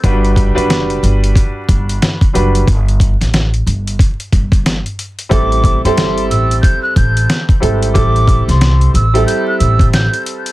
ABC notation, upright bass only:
X:1
M:4/4
L:1/16
Q:"Swing 16ths" 1/4=91
K:Ador
V:1 name="Upright bass" clef=bass
G,,,3 F,,,3 G,,,2 z2 G,,,2 z2 F,,,2 | G,,,3 A,,,3 G,,,2 z2 G,,,3 z3 | A,,,3 G,,,3 A,,,2 z2 A,,,2 z2 ^G,,,2 | A,,,3 C,,3 A,,,2 z2 A,,,3 z3 |]